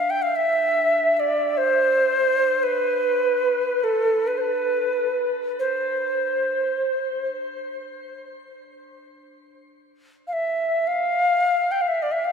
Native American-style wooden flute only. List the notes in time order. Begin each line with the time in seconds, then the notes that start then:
0.00 F5
0.10 G5
0.22 F5
0.36 E5
1.17 D5 E5
1.57 C5
2.63 B4
3.84 A4
4.27 B4
4.38 B4 C5
5.59 C5
10.28 F5
10.33 E5
10.87 F5
11.71 G5
11.82 F5
11.88 E5
12.02 D5
12.12 E5
12.25 F5